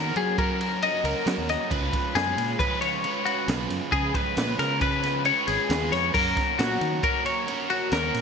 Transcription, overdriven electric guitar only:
Already playing: F#3 A#3 C#4 F#4 A#4
0.38 F#3 A#3 C#4 F#4 A#4
0.60 C#4 F#4 A#4
0.82 A#3 C#4 F#4 A#4
1.04 C#4 F#4 A#4
1.25 F#3 A#3 C#4 F#4 A#4
1.70 C#3 F3 G#3 C#4 F4 B4
2.14 G#3 C#4 F4 B4
2.59 C#3 F3 G#3 C#4 F4 B4
2.81 G#3 C#4 F4 B4
3.03 G#3 C#4 F4 B4
3.25 G#3 C#4 F4 B4
3.47 C#3 F3 G#3 C#4 F4 B4
3.91 C#3 F3 G#3 C#4 F4 B4
4.36 G#3 C#4 F4 B4
4.80 C#3 F3 G#3 C#4 F4 B4
5.02 G#3 C#4 F4 B4
5.25 G#3 C#4 F4 B4
5.47 G#3 C#4 F4 B4
5.69 C#3 F3 G#3 C#4 F4 B4
6.13 F#3 A#3 C#4 F#4 A#4
6.58 A#3 C#4 F#4 A#4
7.03 F#3 A#3 C#4 F#4 A#4
7.25 C#4 F#4 A#4
7.47 A#3 C#4 F#4 A#4
7.69 C#4 F#4 A#4
7.91 F#3 A#3 C#4 F#4 A#4

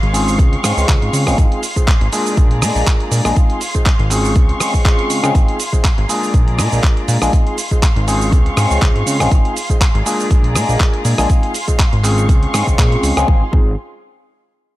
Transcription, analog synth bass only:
0.03 G#1
0.39 C#2
0.64 G#2
0.77 C#2
0.89 C#2
1.02 G#2
1.13 C#3
1.27 G#1
1.38 G#1
2.01 G#1
2.37 A#1
2.62 A#2
2.75 A#1
3.11 A#2
3.25 A#1
3.99 G#1
4.36 C#2
5.10 C#3
5.24 C#3
5.35 G#1
5.98 G#1
6.34 A#1
6.59 A#2
6.72 A#1
7.08 A#2
7.22 A#1
7.96 G#1
8.32 C#2
8.57 G#2
8.71 C#2
8.82 C#2
8.95 G#2
9.07 C#3
9.20 G#1
9.32 G#1
9.95 G#1
10.31 A#1
10.55 A#2
10.69 A#1
11.05 A#2
11.19 A#1
11.93 G#1
12.29 C#2
12.54 G#2
12.67 C#2
12.79 A#2
13.03 C#2
13.17 C#2
13.28 G#1
13.53 G#1

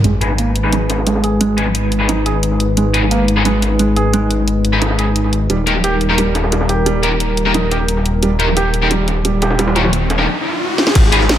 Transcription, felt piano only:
0.04 G#3
0.38 A#3
0.73 G#3
1.07 G#3
1.24 G#4
1.41 G#3
2.09 D#4
2.26 G#4
2.77 G#3
3.11 A#3
3.45 G#3
3.79 G#3
3.96 G#4
4.13 G#3
4.82 D#4
4.99 G#4
5.50 G3
5.84 G4
6.18 G3
6.52 G3
6.69 G4
6.86 G3
7.54 D#4
7.71 G4
8.23 G3
8.57 G4
8.91 G3
9.25 G3
9.42 G4
9.59 G3

